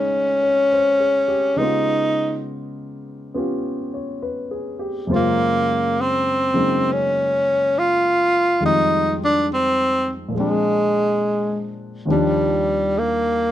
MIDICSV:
0, 0, Header, 1, 3, 480
1, 0, Start_track
1, 0, Tempo, 875912
1, 862, Time_signature, 4, 2, 24, 8
1, 7406, End_track
2, 0, Start_track
2, 0, Title_t, "Tenor saxophone"
2, 0, Program_c, 0, 66
2, 0, Note_on_c, 0, 61, 78
2, 863, Note_on_c, 0, 63, 73
2, 871, Note_off_c, 0, 61, 0
2, 1342, Note_off_c, 0, 63, 0
2, 2825, Note_on_c, 0, 58, 74
2, 3293, Note_on_c, 0, 60, 67
2, 3301, Note_off_c, 0, 58, 0
2, 3795, Note_on_c, 0, 61, 78
2, 3803, Note_off_c, 0, 60, 0
2, 4267, Note_on_c, 0, 65, 81
2, 4275, Note_off_c, 0, 61, 0
2, 4726, Note_off_c, 0, 65, 0
2, 4743, Note_on_c, 0, 63, 83
2, 5022, Note_off_c, 0, 63, 0
2, 5067, Note_on_c, 0, 62, 72
2, 5196, Note_off_c, 0, 62, 0
2, 5226, Note_on_c, 0, 60, 73
2, 5565, Note_off_c, 0, 60, 0
2, 5696, Note_on_c, 0, 56, 71
2, 6456, Note_off_c, 0, 56, 0
2, 6638, Note_on_c, 0, 55, 67
2, 7114, Note_on_c, 0, 58, 71
2, 7123, Note_off_c, 0, 55, 0
2, 7406, Note_off_c, 0, 58, 0
2, 7406, End_track
3, 0, Start_track
3, 0, Title_t, "Grand piano"
3, 0, Program_c, 1, 0
3, 0, Control_c, 1, 64, 127
3, 0, Note_on_c, 1, 49, 44
3, 0, Note_on_c, 1, 56, 34
3, 0, Note_on_c, 1, 61, 33
3, 0, Note_on_c, 1, 63, 39
3, 0, Note_on_c, 1, 65, 50
3, 237, Note_on_c, 1, 73, 38
3, 398, Note_on_c, 1, 72, 39
3, 477, Note_off_c, 1, 73, 0
3, 549, Note_on_c, 1, 68, 40
3, 687, Note_off_c, 1, 72, 0
3, 702, Note_on_c, 1, 67, 45
3, 793, Note_off_c, 1, 68, 0
3, 848, Note_off_c, 1, 49, 0
3, 857, Note_on_c, 1, 49, 35
3, 858, Note_off_c, 1, 56, 0
3, 865, Note_off_c, 1, 61, 0
3, 866, Note_on_c, 1, 56, 35
3, 869, Note_off_c, 1, 65, 0
3, 870, Note_off_c, 1, 63, 0
3, 870, Control_c, 1, 64, 0
3, 874, Note_on_c, 1, 59, 36
3, 879, Note_on_c, 1, 63, 36
3, 885, Note_on_c, 1, 65, 44
3, 949, Note_off_c, 1, 67, 0
3, 954, Control_c, 1, 64, 127
3, 1825, Note_off_c, 1, 59, 0
3, 1830, Note_off_c, 1, 65, 0
3, 1833, Note_on_c, 1, 59, 38
3, 1838, Note_on_c, 1, 65, 33
3, 1839, Note_on_c, 1, 61, 33
3, 1848, Note_on_c, 1, 67, 36
3, 2159, Note_on_c, 1, 73, 35
3, 2315, Note_on_c, 1, 71, 36
3, 2400, Note_off_c, 1, 73, 0
3, 2472, Note_on_c, 1, 68, 39
3, 2607, Note_off_c, 1, 71, 0
3, 2619, Note_off_c, 1, 67, 0
3, 2627, Note_on_c, 1, 67, 40
3, 2716, Note_off_c, 1, 68, 0
3, 2776, Note_off_c, 1, 49, 0
3, 2778, Note_on_c, 1, 42, 43
3, 2784, Note_on_c, 1, 49, 35
3, 2785, Note_off_c, 1, 56, 0
3, 2789, Note_off_c, 1, 59, 0
3, 2791, Control_c, 1, 64, 0
3, 2792, Note_off_c, 1, 61, 0
3, 2792, Note_off_c, 1, 63, 0
3, 2792, Note_off_c, 1, 65, 0
3, 2793, Note_on_c, 1, 56, 40
3, 2793, Note_on_c, 1, 58, 37
3, 2801, Note_on_c, 1, 72, 40
3, 2806, Note_on_c, 1, 65, 49
3, 2873, Note_off_c, 1, 67, 0
3, 2903, Control_c, 1, 64, 127
3, 3574, Note_off_c, 1, 49, 0
3, 3582, Note_on_c, 1, 49, 33
3, 3583, Note_off_c, 1, 56, 0
3, 3584, Note_on_c, 1, 54, 27
3, 3586, Note_off_c, 1, 58, 0
3, 3592, Note_on_c, 1, 56, 31
3, 3594, Note_on_c, 1, 58, 30
3, 3596, Note_on_c, 1, 63, 35
3, 4702, Note_off_c, 1, 42, 0
3, 4704, Note_off_c, 1, 49, 0
3, 4705, Note_off_c, 1, 54, 0
3, 4709, Note_off_c, 1, 56, 0
3, 4710, Note_off_c, 1, 58, 0
3, 4711, Note_off_c, 1, 63, 0
3, 4711, Control_c, 1, 64, 0
3, 4713, Note_off_c, 1, 65, 0
3, 4713, Note_off_c, 1, 72, 0
3, 4713, Note_on_c, 1, 41, 36
3, 4715, Note_on_c, 1, 51, 36
3, 4718, Note_on_c, 1, 55, 37
3, 4721, Note_on_c, 1, 65, 38
3, 4722, Note_on_c, 1, 56, 34
3, 4817, Control_c, 1, 64, 127
3, 5636, Note_on_c, 1, 46, 37
3, 5649, Note_on_c, 1, 53, 39
3, 5662, Note_off_c, 1, 56, 0
3, 5669, Note_off_c, 1, 41, 0
3, 5670, Note_off_c, 1, 51, 0
3, 5670, Note_on_c, 1, 56, 38
3, 5671, Note_off_c, 1, 55, 0
3, 5671, Control_c, 1, 64, 0
3, 5673, Note_off_c, 1, 65, 0
3, 5684, Note_on_c, 1, 60, 41
3, 5697, Note_on_c, 1, 62, 44
3, 5766, Control_c, 1, 64, 127
3, 6607, Note_on_c, 1, 39, 44
3, 6608, Note_off_c, 1, 46, 0
3, 6613, Note_on_c, 1, 51, 40
3, 6615, Note_off_c, 1, 53, 0
3, 6623, Note_on_c, 1, 53, 43
3, 6626, Note_off_c, 1, 56, 0
3, 6627, Note_off_c, 1, 62, 0
3, 6628, Note_on_c, 1, 55, 43
3, 6631, Control_c, 1, 64, 0
3, 6633, Note_off_c, 1, 60, 0
3, 6635, Note_on_c, 1, 62, 52
3, 6738, Control_c, 1, 64, 127
3, 7406, Note_off_c, 1, 39, 0
3, 7406, Note_off_c, 1, 51, 0
3, 7406, Note_off_c, 1, 53, 0
3, 7406, Note_off_c, 1, 55, 0
3, 7406, Note_off_c, 1, 62, 0
3, 7406, End_track
0, 0, End_of_file